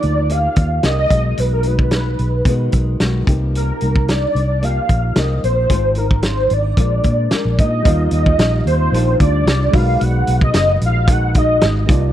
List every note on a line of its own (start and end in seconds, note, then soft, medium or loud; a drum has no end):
0.00 0.47 D2 medium
0.00 0.35 D#3 medium
0.00 0.30 F3 medium
0.00 0.28 A#3 medium
0.00 0.30 D#4 medium
0.00 0.30 G4 medium
0.00 0.31 D5 medium
0.00 0.33 D5 loud
0.00 closed hi-hat medium
0.29 0.82 A#3 soft
0.29 0.84 D#4 medium
0.29 0.84 G4 medium
0.29 0.85 D5 medium
0.29 0.85 F5 loud
0.29 closed hi-hat medium
0.56 0.78 D#2 medium
0.56 kick medium
0.56 closed hi-hat medium
0.83 1.05 C2 medium
0.83 1.10 A#3 medium
0.83 1.11 D#4 medium
0.83 1.11 G4 medium
0.83 1.12 D5 medium
0.83 0.97 D#5 medium
0.83 snare loud
0.83 closed hi-hat medium
0.98 1.41 D#5 loud
1.10 1.33 B1 medium
1.10 1.66 B2 soft
1.10 2.47 D#3 medium
1.10 1.66 G#3 medium
1.10 1.67 D#4 medium
1.10 1.64 F#4 medium
1.10 kick medium
1.10 closed hi-hat medium
1.37 2.15 B1 medium
1.37 1.52 B4 medium
1.37 closed hi-hat medium
1.53 1.68 A#4 medium
1.63 2.46 F#4 soft
1.63 2.74 B4 medium
1.63 closed hi-hat medium
1.67 2.47 G#3 soft
1.67 2.49 D#4 soft
1.79 kick medium
1.91 snare loud
1.91 closed hi-hat medium
2.19 2.41 B1 medium
2.19 closed hi-hat medium
2.45 2.67 B2 medium
2.45 3.00 D#3 medium
2.45 3.01 G#3 medium
2.45 kick medium
2.45 closed hi-hat medium
2.50 3.02 D#4 medium
2.50 3.02 F#4 medium
2.72 2.95 B1 medium
2.72 kick medium
2.72 closed hi-hat medium
3.00 3.22 B1 medium
3.00 3.27 D#3 medium
3.00 3.28 G#3 medium
3.00 3.28 D#4 medium
3.00 3.28 F#4 medium
3.00 snare medium
3.00 closed hi-hat medium
3.27 3.70 C2 medium
3.27 3.83 C3 medium
3.27 3.85 F3 medium
3.27 3.82 A#3 medium
3.27 3.83 D#4 medium
3.27 3.80 G4 medium
3.27 kick medium
3.27 closed hi-hat medium
3.55 4.12 A#4 medium
3.55 closed hi-hat medium
3.81 4.25 C2 medium
3.81 4.60 A#3 soft
3.81 4.63 D#4 soft
3.81 4.62 G4 soft
3.81 closed hi-hat medium
3.96 kick medium
4.08 4.65 D5 loud
4.08 snare loud
4.08 closed hi-hat medium
4.35 4.78 C2 medium
4.35 closed hi-hat medium
4.61 5.15 F3 medium
4.61 5.15 A#3 medium
4.61 5.15 D#4 medium
4.61 5.16 G4 medium
4.61 5.19 F5 loud
4.61 closed hi-hat medium
4.89 5.11 A#1 medium
4.89 kick medium
4.89 closed hi-hat medium
5.15 5.38 C2 medium
5.15 5.68 F3 medium
5.15 5.70 A#3 medium
5.15 5.69 D#4 medium
5.15 5.71 G4 medium
5.15 5.44 D#5 loud
5.15 snare loud
5.15 closed hi-hat medium
5.44 5.65 A#1 medium
5.44 5.99 C5 medium
5.44 closed hi-hat medium
5.69 6.47 G#1 loud
5.69 5.96 G#3 medium
5.69 5.97 D#4 medium
5.69 5.97 F4 medium
5.69 5.96 C5 medium
5.69 kick medium
5.69 closed hi-hat medium
5.95 6.78 F4 soft
5.95 6.27 A#4 medium
5.95 6.78 C5 soft
5.95 closed hi-hat medium
6.00 6.77 D#4 soft
6.11 kick medium
6.22 6.54 C5 medium
6.22 snare loud
6.22 closed hi-hat medium
6.50 6.72 G#1 medium
6.50 7.59 D5 medium
6.50 closed hi-hat medium
6.77 6.99 A#1 loud
6.77 7.30 G#3 medium
6.77 7.32 D4 medium
6.77 7.33 F4 soft
6.77 7.34 A#4 medium
6.77 kick medium
6.77 closed hi-hat medium
7.03 7.26 A#2 medium
7.03 kick medium
7.03 closed hi-hat medium
7.31 7.86 G#3 medium
7.31 7.86 D4 medium
7.31 7.87 F4 medium
7.31 7.87 A#4 medium
7.31 muted fingered electric bass stroke soft
7.31 snare loud
7.31 closed hi-hat medium
7.45 7.60 A#1 medium
7.59 7.80 A#2 medium
7.59 8.09 D#5 medium
7.59 kick loud
7.59 closed hi-hat medium
7.82 8.07 D#2 loud
7.82 8.92 D#3 medium
7.82 9.69 G3 medium
7.82 9.70 D#4 medium
7.82 9.71 F4 medium
7.82 kick loud
7.82 closed hi-hat medium
7.87 8.93 G3 medium
7.87 8.94 F4 medium
7.87 9.71 F5 medium
8.11 8.33 D#2 medium
8.11 8.62 D#5 loud
8.11 closed hi-hat medium
8.26 kick medium
8.38 8.60 A#1 medium
8.38 snare loud
8.38 closed hi-hat medium
8.66 8.88 D#2 medium
8.66 9.17 C5 loud
8.66 closed hi-hat medium
8.92 9.14 A#1 loud
8.92 9.20 D#3 medium
8.92 9.21 G3 medium
8.92 9.20 D4 medium
8.92 9.19 F4 medium
8.92 closed hi-hat medium
9.20 9.42 D2 medium
9.20 9.75 G3 soft
9.20 9.75 D4 soft
9.20 9.73 F4 medium
9.20 9.76 D5 loud
9.20 kick medium
9.20 closed hi-hat medium
9.46 9.68 C2 medium
9.46 snare loud
9.46 closed hi-hat medium
9.70 9.96 B1 loud
9.70 11.84 G#3 medium
9.70 11.84 D#4 medium
9.70 11.08 F#4 medium
9.70 11.85 F#4 medium
9.70 kick loud
9.70 open hi-hat medium
9.75 11.11 B2 medium
9.75 11.07 D#3 medium
9.75 11.08 G#3 medium
9.75 11.09 D#4 medium
9.75 11.86 B4 medium
9.75 10.04 F5 loud
10.01 10.23 B1 loud
10.01 10.42 F#5 loud
10.01 closed hi-hat loud
10.27 10.50 B1 medium
10.27 closed hi-hat medium
10.41 10.80 D#5 loud
10.41 kick medium
10.54 10.77 F#1 medium
10.54 snare loud
10.54 closed hi-hat loud
10.81 11.59 A#1 medium
10.81 11.13 F5 loud
10.81 closed hi-hat medium
11.08 11.35 D#3 medium
11.08 11.35 G#3 medium
11.08 11.34 D#4 medium
11.08 11.33 F#4 medium
11.08 11.37 F#5 loud
11.08 kick loud
11.08 closed hi-hat medium
11.34 11.89 G#3 soft
11.34 11.88 D#4 medium
11.34 11.87 F#4 medium
11.34 11.87 D#5 medium
11.34 kick medium
11.34 closed hi-hat medium
11.61 11.85 G#1 medium
11.61 snare loud
11.61 closed hi-hat medium
11.87 12.13 C2 loud
11.87 12.13 C3 medium
11.87 12.13 F3 medium
11.87 12.13 A#3 medium
11.87 12.13 D#4 medium
11.87 12.13 F4 medium
11.87 12.13 G4 medium
11.87 kick loud
11.87 closed hi-hat medium
11.91 12.13 D5 medium